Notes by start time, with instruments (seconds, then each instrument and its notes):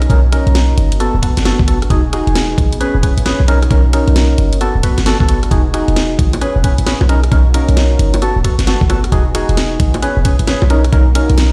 Already playing: analog synth pad A#3 C#4 D#4 F#4
0.02 cross-stick, closed hi-hat
0.10 808-style bass B1, synth stab C#4 D#4 A#4, kick, closed hi-hat
0.32 synth stab C#4 D#4 A#4, cross-stick, closed hi-hat
0.47 808-style bass B1, closed hi-hat
0.55 snare, closed hi-hat
0.78 808-style bass G1, closed hi-hat
0.92 closed hi-hat
1.00 analog synth pad A3 B3 D4, synth stab B3 F#4 A4, closed hi-hat
1.14 808-style bass D1
1.23 synth stab B3 F#4 A4, kick, closed hi-hat
1.37 808-style bass G1, snare, closed hi-hat
1.45 synth stab B3 F#4 A4, snare, closed hi-hat
1.59 808-style bass G1, kick
1.68 synth stab B3 F#4 A4, closed hi-hat
1.82 cross-stick, closed hi-hat
1.90 808-style bass E1, analog synth pad G#3 B3 D#4, synth stab D#4 F#4 G#4, kick, closed hi-hat
2.13 synth stab D#4 F#4 G#4, cross-stick, closed hi-hat
2.27 808-style bass E1, closed hi-hat
2.35 snare, closed hi-hat
2.58 808-style bass A1, kick, closed hi-hat
2.73 closed hi-hat
2.81 synth stab C#4 G#4 B4, analog synth pad C#4 E4 G#4, closed hi-hat
2.95 808-style bass E1
3.03 synth stab C#4 G#4 B4, kick, closed hi-hat
3.17 808-style bass A1, closed hi-hat
3.26 synth stab C#4 G#4 B4, snare, closed hi-hat
3.40 808-style bass B1
3.48 analog synth pad A#3 D#4 F#4, synth stab C#4 D#4 A#4, closed hi-hat
3.63 cross-stick, closed hi-hat
3.71 808-style bass B1, synth stab C#4 D#4 A#4, kick, closed hi-hat
3.93 synth stab C#4 D#4 A#4, cross-stick, closed hi-hat
4.08 808-style bass B1, closed hi-hat
4.16 snare, closed hi-hat
4.38 808-style bass G1, closed hi-hat
4.53 closed hi-hat
4.61 analog synth pad A3 B3 D4 F#4, synth stab B3 F#4 A4, closed hi-hat
4.75 808-style bass D1
4.83 synth stab B3 F#4 B4, kick, closed hi-hat
4.98 808-style bass G1, snare, closed hi-hat
5.06 synth stab B3 F#4 A4, snare, closed hi-hat
5.20 808-style bass G1, synth stab B3 F#4 A4, kick
5.29 synth stab B3 F#4 A4, closed hi-hat
5.43 cross-stick, closed hi-hat
5.51 808-style bass E1, analog synth pad G#3 D#4, synth stab D#4 F#4 G#4, kick, closed hi-hat
5.74 synth stab D#4 F#4 G#4, cross-stick, closed hi-hat
5.88 808-style bass E1, closed hi-hat
5.96 snare, closed hi-hat
6.19 808-style bass A1, kick, closed hi-hat
6.33 closed hi-hat, high bongo
6.41 analog synth pad B3 C#4 E4 G#4, synth stab C#4 G#4 B4, closed hi-hat
6.56 808-style bass E1
6.64 synth stab C#4 G#4 B4, kick, closed hi-hat
6.78 808-style bass A1, closed hi-hat
6.87 synth stab C#4 G#4 B4, snare, closed hi-hat
7.01 808-style bass B1, high bongo
7.09 analog synth pad A#3 C#4 D#4 F#4, synth stab C#4 D#4 A#4, closed hi-hat
7.24 cross-stick, closed hi-hat
7.32 808-style bass B1, synth stab C#4 D#4 A#4, kick, closed hi-hat
7.54 synth stab C#4 D#4 A#4, cross-stick, closed hi-hat
7.69 808-style bass B1, closed hi-hat
7.77 snare, closed hi-hat
7.99 808-style bass G1, closed hi-hat
8.14 closed hi-hat, high bongo
8.22 analog synth pad A3 B3 D4 F#4, synth stab B3 F#4 A4, closed hi-hat
8.36 808-style bass D1
8.44 synth stab B3 F#4 A4, kick, closed hi-hat
8.59 808-style bass G1, snare, closed hi-hat
8.67 synth stab B3 F#4 A4, snare, closed hi-hat
8.81 808-style bass G1, kick
8.90 synth stab B3 F#4 A4, closed hi-hat, high bongo
9.04 cross-stick, closed hi-hat
9.12 808-style bass E1, analog synth pad G#3 D#4, synth stab D#4 F#4 G#4, kick, closed hi-hat
9.35 synth stab D#4 F#4 G#4, cross-stick, closed hi-hat
9.49 808-style bass E1, closed hi-hat
9.57 snare, closed hi-hat
9.80 808-style bass A1, kick, closed hi-hat
9.94 closed hi-hat, high bongo
10.02 analog synth pad C#4 E4 G#4, synth stab C#4 G#4 B4, closed hi-hat
10.17 808-style bass E1
10.25 synth stab C#4 G#4 B4, kick, closed hi-hat
10.39 808-style bass A1, closed hi-hat
10.47 synth stab C#4 G#4 B4, snare, closed hi-hat
10.62 808-style bass B1, high bongo
10.70 analog synth pad A#3 D#4 F#4, synth stab C#4 D#4 A#4, closed hi-hat
10.84 cross-stick, closed hi-hat
10.93 808-style bass B1, synth stab C#4 D#4 A#4, kick, closed hi-hat
11.15 synth stab C#4 D#4 A#4, cross-stick, closed hi-hat
11.30 808-style bass B1, closed hi-hat
11.38 snare, closed hi-hat